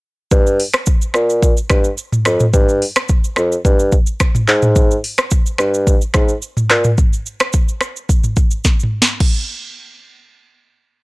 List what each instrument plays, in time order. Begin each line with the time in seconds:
0.31 bassoon G2, kick, shaker
0.47 shaker
0.60 open hi-hat
0.73 finger snap, cross-stick, shaker
0.86 kick, shaker
1.02 shaker
1.14 bassoon A#2, finger snap, cross-stick, shaker
1.30 shaker
1.43 kick, shaker
1.57 shaker
1.70 bassoon G2, finger snap, kick, cross-stick, shaker
1.84 shaker
1.98 shaker
2.12 mid tom, shaker
2.25 bassoon F2, finger snap, cross-stick, shaker
2.40 mid tom, shaker
2.54 bassoon G2, kick, shaker
2.69 shaker
2.82 open hi-hat
2.96 finger snap, cross-stick, shaker
3.09 kick, shaker
3.24 shaker
3.36 bassoon F2, finger snap, cross-stick, shaker
3.52 shaker
3.65 bassoon G2, kick, shaker
3.79 shaker
3.92 kick, shaker
4.07 shaker
4.20 finger snap, kick, cross-stick, shaker
4.35 mid tom, shaker
4.48 bassoon G#2, clap, shaker
4.62 mid tom, shaker
4.76 kick, shaker
4.91 shaker
5.04 open hi-hat
5.18 finger snap, cross-stick, shaker
5.31 kick, shaker
5.46 shaker
5.58 bassoon G2, finger snap, cross-stick, shaker
5.74 shaker
5.87 kick, shaker
6.01 shaker
6.14 bassoon G#2, finger snap, kick, cross-stick, shaker
6.29 shaker
6.42 shaker
6.57 mid tom, shaker
6.70 bassoon A#2, finger snap, cross-stick, clap, shaker
6.84 mid tom, shaker
6.98 kick, shaker
7.13 shaker
7.26 shaker
7.40 finger snap, cross-stick, shaker
7.53 kick, shaker
7.69 shaker
7.81 finger snap, cross-stick, shaker
7.96 shaker
8.09 kick, shaker
8.24 mid tom, shaker
8.36 kick, shaker
8.51 shaker
8.64 kick, snare, shaker
8.80 mid tom, shaker
9.02 snare
9.07 shaker
9.20 kick, crash